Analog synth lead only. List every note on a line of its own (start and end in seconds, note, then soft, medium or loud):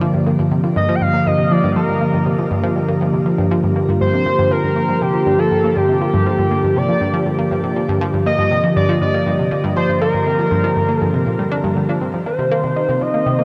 0.77 0.97 D#5 loud
0.95 1.03 G5 medium
1.02 1.28 F5 loud
1.27 1.53 D#5 loud
1.52 1.76 D5 loud
1.76 2.47 A#4 medium
4.01 4.53 C5 loud
4.51 5.03 A#4 medium
5.02 5.41 G4 loud
5.39 5.78 A4 loud
5.77 6.78 G4 loud
6.77 7.27 D5 loud
8.26 8.73 D#5 loud
8.76 9.00 D5 loud
9.02 9.48 D5 loud
9.76 10.00 C5 loud
10.01 10.95 A#4 loud
10.95 11.47 A4 loud
12.27 13.03 C5 loud
13.02 13.44 D#5 loud